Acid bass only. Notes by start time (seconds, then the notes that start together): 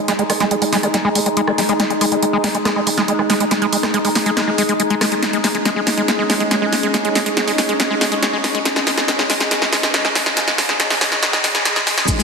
0.08 G#3
0.19 G#3
0.30 G#3
0.40 G#3
0.51 G#3
0.62 G#3
0.72 G#3
0.83 G#3
0.94 G#3
1.05 G#3
1.15 G#3
1.26 G#3
1.37 G#3
1.48 G#3
1.58 G#3
1.69 G#3
1.80 G#3
1.90 G#3
2.01 G#3
2.12 G#3
2.23 G#3
2.33 G#3
2.44 G#3
2.55 G#3
2.65 G#3
2.76 G#3
2.87 G#3
2.98 G#3
3.08 G#3
3.19 G#3
3.30 G#3
3.40 G#3
3.51 G#3
3.62 G#3
3.73 G#3
3.83 G#3
3.94 G#3
4.05 G#3
4.15 G#3
4.26 G#3
4.37 G#3
4.48 G#3
4.58 G#3
4.69 G#3
4.80 G#3
4.90 G#3
5.01 G#3
5.12 G#3
5.23 G#3
5.33 G#3
5.44 G#3
5.55 G#3
5.65 G#3
5.76 G#3
5.87 G#3
5.98 G#3
6.08 G#3
6.19 G#3
6.30 G#3
6.40 G#3
6.51 G#3
6.62 G#3
6.73 G#3
6.83 G#3
6.94 G#3
7.05 G#3
7.15 G#3
7.26 G#3
7.37 G#3
7.48 G#3
7.58 G#3
7.69 G#3
7.80 G#3
7.90 G#3
8.01 G#3
8.12 G#3
8.23 G#3
8.33 G#3
8.44 G#3
8.55 G#3
8.65 G#3
8.76 G#3
8.87 G#3
8.98 G#3
9.08 G#3
9.19 G#3
9.30 G#3
9.40 G#3
9.51 G#3
9.62 G#3
9.73 G#3
9.83 G#3
9.94 G#3
10.05 G#3
10.15 G#3
10.26 G#3
10.37 G#3
10.48 G#3
10.58 G#3
10.69 G#3
10.80 G#3
10.90 G#3
11.01 G#3
11.12 G#3
11.23 G#3
11.33 G#3
11.44 G#3
11.55 G#3
11.65 G#3
11.76 G#3
11.87 G#3
11.98 G#3
12.08 G#3
12.19 G#3